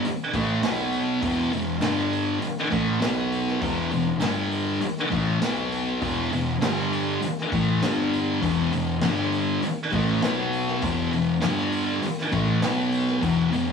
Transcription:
0.05 muted distorted electric guitar stroke, muted picked electric bass stroke, open hi-hat
0.33 A1 A2 E3 A3, kick, open hi-hat
0.62 B1 B2 F#3 B3, snare, clap, open hi-hat
0.93 open hi-hat
1.21 E1 E2 B2 E3, kick, open hi-hat
1.51 E1 E2 B2, open hi-hat
1.81 G1 G2 D3 G3, snare, clap, open hi-hat
2.13 open hi-hat
2.40 muted distorted electric guitar stroke, open hi-hat
2.45 muted picked electric bass stroke
2.57 snare
2.70 A1 A2 E3 A3, kick, open hi-hat
3.00 B2 F#3 B3, snare, clap, open hi-hat
3.05 B1
3.32 open hi-hat
3.47 snare
3.60 E1 E2 B2 E3, kick, open hi-hat
3.91 E1 E2 B2, open hi-hat
4.20 G1 G2 D3 G3, snare, clap, open hi-hat
4.52 open hi-hat
4.81 muted distorted electric guitar stroke, open hi-hat
4.97 snare
5.10 A1 A2 E3 A3, kick, open hi-hat
5.40 B1 B2 F#3 B3, snare, clap, open hi-hat
5.72 open hi-hat
6.01 E1 E2 B2 E3, kick, open hi-hat
6.31 E1 E2 B2, open hi-hat
6.61 G1 G2 D3 G3, snare, clap, open hi-hat
6.93 open hi-hat
7.22 muted distorted electric guitar stroke, muted picked electric bass stroke, open hi-hat
7.38 snare
7.52 A1 A2 E3 A3, kick, open hi-hat
7.82 G1 G2 D3 G3, snare, clap, open hi-hat
8.13 open hi-hat
8.41 E1 E2 B2 E3, kick, open hi-hat
8.72 E1 E2 B2, open hi-hat
9.02 G1 G2 D3 G3, snare, clap, open hi-hat
9.32 open hi-hat
9.62 muted distorted electric guitar stroke, muted picked electric bass stroke, open hi-hat
9.92 A1 A2 E3 A3, kick, open hi-hat
10.22 B1 B2 F#3 B3, snare, clap, open hi-hat
10.53 open hi-hat
10.68 snare
10.82 E1 E2 B2 E3, kick, open hi-hat
11.11 E1 E2 B2, open hi-hat
11.41 G1 G2 D3 G3, snare, clap, open hi-hat
11.72 open hi-hat
12.03 muted distorted electric guitar stroke, muted picked electric bass stroke, open hi-hat
12.18 snare
12.32 A1 A2 E3 A3, kick, open hi-hat
12.61 B1 B2 F#3 B3, snare, clap, open hi-hat
12.92 open hi-hat
13.07 snare
13.20 E1 E2 B2 E3, kick, open hi-hat
13.51 E1 E2 B2, open hi-hat

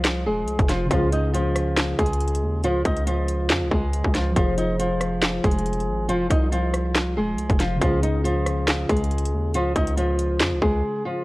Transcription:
Already playing: C2 F3 F4 G#4 C5
0.05 snare, clap, closed hi-hat
0.26 D#1 G#3 G#4
0.43 C2
0.48 closed hi-hat
0.59 F1, kick, closed hi-hat
0.69 F3 F4, snare, closed hi-hat
0.86 C#3 C#4
0.91 C#2 F3 F4, kick, closed hi-hat
0.95 G#4
1.12 D#4 D#5, closed hi-hat
1.33 F3 F4, closed hi-hat
1.56 cross-stick, closed hi-hat
1.77 snare, clap, closed hi-hat
1.99 C#2 G#3 G#4, kick, closed hi-hat
2.06 closed hi-hat
2.13 closed hi-hat
2.20 closed hi-hat
2.28 closed hi-hat
2.35 closed hi-hat
2.42 D#2
2.64 C#2 F3 F4, closed hi-hat
2.85 C#2 D#4 D#5, kick, closed hi-hat, open hi-hat
2.97 closed hi-hat
3.07 F3 F4, closed hi-hat
3.28 closed hi-hat
3.50 F2, snare, clap, closed hi-hat
3.61 C#2
3.71 C#2 G#3 G#4, kick
3.93 closed hi-hat
4.04 C#2, kick
4.15 F3 F4, snare, closed hi-hat
4.32 F3 F4
4.36 F1 F3 F4 G#4, kick, closed hi-hat
4.41 C5
4.58 D#4 D#5, closed hi-hat
4.79 F3 F4, closed hi-hat
5.01 cross-stick, closed hi-hat
5.23 snare, clap, closed hi-hat
5.44 F1 G#3 G#4, kick, closed hi-hat
5.51 closed hi-hat
5.59 closed hi-hat
5.66 closed hi-hat
5.73 closed hi-hat
5.80 closed hi-hat
5.87 G#1
6.09 F1 F3 F4, closed hi-hat
6.30 C2 D#4 D#5, kick, closed hi-hat
6.52 F3 F4, closed hi-hat
6.74 cross-stick, closed hi-hat
6.95 snare, clap, closed hi-hat
7.17 D#1 G#3 G#4
7.33 C2
7.38 closed hi-hat
7.50 F1, kick, closed hi-hat
7.60 F3 F4, snare, closed hi-hat
7.77 C#3 C#4
7.81 C#2 F3 F4, kick, closed hi-hat
7.86 G#4
8.03 D#4 D#5, closed hi-hat
8.24 F3 F4, closed hi-hat
8.46 cross-stick, closed hi-hat
8.68 snare, clap, closed hi-hat
8.89 C#2 G#3 G#4, kick, closed hi-hat
8.97 closed hi-hat
9.04 closed hi-hat
9.11 closed hi-hat
9.18 closed hi-hat
9.25 closed hi-hat
9.33 D#2
9.54 C#2 F3 F4, closed hi-hat
9.76 C#2 D#4 D#5, kick, closed hi-hat, open hi-hat
9.87 closed hi-hat
9.97 F3 F4, closed hi-hat
10.19 closed hi-hat
10.40 F2, snare, clap, closed hi-hat
10.52 C#2
10.62 C#2 G#3 G#4, kick
11.05 F3 F4

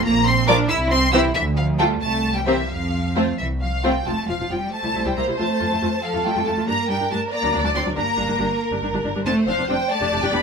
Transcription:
0.05 A#1 A#3 A#5
0.26 C4 C6
0.47 F3 D4 F4 A#4 D5 D6
0.69 C2 E4 E6
0.91 C4 C6
1.12 E3 C4 E4 G4 C5 E6
1.34 D2 E3 E5
1.56 F3 F5
1.78 G3 A3 F4 A4 G5
2.01 C2 A3 A5
2.35 G3 G5
2.47 E3 A#3 C4 G4 C5 E5
2.69 F2 F3 F5
3.16 A3 C4 F4 C5
3.38 C2 E3 E5
3.61 F3 F5
3.84 G3 A3 C4 F4 C5 G5
4.06 F1 F3 A3 F4 A5
4.28 F1 F3 F4 F5
4.39 F1 F3 F4
4.50 F1 F3 G3 F4 G5
4.72 A3 C5 A5
4.84 C2 G3 E4
4.95 C2 G3 E4
5.05 C2 G3 E4 G5
5.17 C2 G3 A#3 E4 A#5
5.27 C2 G3 E4
5.38 F2 A3 F4 A5
5.60 F2 A3 F4
5.71 F2 A3 F4
5.82 F2 A3 F4
6.03 F3 A4 F5
6.14 F2 A3 F4
6.25 F2 G3 A3 F4 G5
6.36 F2 A3 F4
6.46 F2 A3 F4 A5
6.57 F2 A3 F4
6.67 G2 G3 A#3 D4 A#4 A#5
6.89 G2 G3 D4 G5
7.01 G2 G3 D4
7.10 G2 G3 A3 D4 A5
7.32 A#3 D5 A#5
7.43 D2 F#3 D4
7.53 D2 F#3 D4
7.64 D2 F#3 A3 D4 A5
7.74 D2 F#3 C4 D4 C6
7.85 D2 F#3 D4
7.96 G1 G3 A#3 D4 A#4 A#5
8.17 G1 G3 D4
8.28 G1 G3 D4
8.39 G1 G3 D4
8.72 G1 G3 D4
8.82 G1 G3 D4
8.93 G1 G3 D4
9.04 G1 G3 D4
9.15 G1 G3 D4
9.26 F1 A3 C4 D4 C5 A5
9.47 F1 F3 C4 D4 F5
9.58 F1 C4 D4
9.69 F1 G3 C4 D4 G5
9.90 A3 D5 A5
10.01 F1 D4 G4
10.12 F1 D4 G4
10.22 F1 G3 D4 G4 G5
10.33 F1 B3 D4 G4 B5

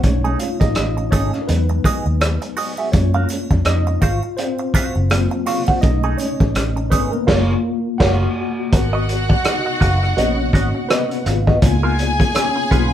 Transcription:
0.03 B1 G#3 A3 C#4 D#4 C#5, kick, closed hi-hat, muted triangle
0.24 A3 D#4 G#4, muted triangle
0.39 F4 F5, muted clean electric guitar stroke, closed hi-hat, triangle
0.60 A1 D#4 D#5, muted clean electric guitar stroke, kick, closed hi-hat, muted triangle
0.75 A1, cross-stick, closed hi-hat, muted triangle
0.97 muted clean electric guitar stroke, muted triangle
1.11 G#1 A3 C#4 D#4 G#4 C#5, kick, closed hi-hat, triangle
1.34 cross-stick, muted triangle
1.42 A#4
1.48 E2 F#3 G#3 B3 D#4 B4, muted clean electric guitar stroke, closed hi-hat, muted triangle
1.69 muted clean electric guitar stroke, muted triangle
1.84 F#4 G#4 D#5, kick, closed hi-hat, triangle
2.06 D#2, muted clean electric guitar stroke, muted triangle
2.21 muted clean electric guitar stroke, cross-stick, closed hi-hat, muted triangle
2.42 muted clean electric guitar stroke, closed hi-hat, muted triangle
2.57 F#4 G#4 D#5, open hi-hat, triangle
2.77 F#4 G#4 E5, muted triangle
2.92 F#2 G#3 A#3 C#4 F4 C#5, muted clean electric guitar stroke, kick, closed hi-hat, muted triangle
3.14 F#4 A#4 F5, muted triangle
3.29 muted clean electric guitar stroke, closed hi-hat, triangle
3.51 F2, muted clean electric guitar stroke, kick, muted triangle
3.65 F2 D#4 D#5, cross-stick, closed hi-hat, muted triangle
3.87 muted clean electric guitar stroke, muted triangle
4.01 G#1 F4 F#4 C5 F5, kick, closed hi-hat, triangle
4.23 muted clean electric guitar stroke, muted triangle
4.37 C4 C5, muted clean electric guitar stroke, closed hi-hat, muted triangle
4.59 muted clean electric guitar stroke, muted triangle
4.74 F#4 C5 F5, muted fingered electric bass stroke, kick, closed hi-hat, triangle
4.95 F#1, muted clean electric guitar stroke, muted triangle
5.10 F#3 A#3 C4 F4, muted clean electric guitar stroke, cross-stick, closed hi-hat, muted triangle
5.31 muted clean electric guitar stroke, muted triangle
5.46 F4 F#4 C5 F5, cross-stick, open hi-hat, triangle
5.67 F#4 C5 F#5, kick, muted triangle
5.81 B1 G#3 A3 C#4 D#4 D#5, muted clean electric guitar stroke, kick, closed hi-hat, muted triangle
6.03 A3 D#4 G#4, muted triangle
6.17 C#4 C#5, muted clean electric guitar stroke, closed hi-hat, triangle
6.40 A1, muted clean electric guitar stroke, kick, muted triangle
6.55 A1, cross-stick, closed hi-hat, muted triangle
6.76 muted clean electric guitar stroke, muted triangle
6.90 G#1 A3 B3 D#4 G#4 B4, kick, closed hi-hat, triangle
7.11 A#3 A#4, muted clean electric guitar stroke, muted triangle
7.27 F#1 A#3 F4 A#4 C#5, kick, snare, crash
7.98 F#1 F4 F#4 A#4 C#5 F#5, kick, snare, crash
8.72 G#1 B3 F#4 A#4 F#5, muted clean electric guitar stroke, kick, closed hi-hat
8.93 F#4 B4 D#5
9.08 muted clean electric guitar stroke, closed hi-hat
9.29 muted clean electric guitar stroke, kick
9.44 D#4 D#5, muted clean electric guitar stroke, cross-stick, closed hi-hat
9.66 muted clean electric guitar stroke
9.80 F#1 F#4 B4 F5, kick, closed hi-hat
10.02 muted clean electric guitar stroke, cross-stick
10.17 A#1 A#3 B3 C#4 F#4 B4 C#5 D#5, closed hi-hat
10.53 G#1 F#4 B4 D#5, kick, closed hi-hat
10.75 muted clean electric guitar stroke
10.89 B3 F#4 B4 D#5, cross-stick, closed hi-hat
11.11 closed hi-hat
11.25 G#1 F4 F5, muted clean electric guitar stroke, cross-stick, closed hi-hat
11.47 F#4 B4 D#5, kick
11.62 C#2 A#3 B3 D#4 F4 G#4 G#5, muted clean electric guitar stroke, kick, closed hi-hat
11.83 B3 F4 A#4
11.99 muted clean electric guitar stroke, closed hi-hat
12.20 muted clean electric guitar stroke, kick, closed hi-hat
12.35 C#4 C#5, muted clean electric guitar stroke, cross-stick, closed hi-hat
12.56 muted clean electric guitar stroke
12.71 B1 A#3 B3 D#4 F4 B4, kick, closed hi-hat

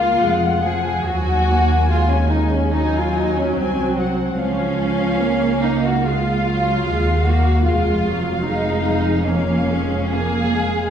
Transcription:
Already playing: C#2 A#3 F4 F5
0.22 F1 F2 G#3 F#5
0.64 F3 G#4
1.05 D#2 F#3 F#4 G#5
1.50 A#3
1.90 G#3 F4
2.12 C#4
2.31 D#4
2.55 C#4
2.74 F#3 D#4 G#5
2.98 F4
3.17 D#4
3.39 C#4
3.57 C2 C4 G#5
3.99 F#5
4.39 C#2 F3 C#4 F5
5.22 A#3
5.63 D#4
5.86 F#4
6.04 G#3 F4 F5
6.47 F#3
6.87 D#2 G#3
7.26 A#3 F#4
7.65 F1 F2 G#3 F4 F5
8.09 F#3
8.44 G#3 D#4
9.26 A#3 C#4 F5
9.72 G#3
10.12 A#3 G#4 F5
10.55 G#3

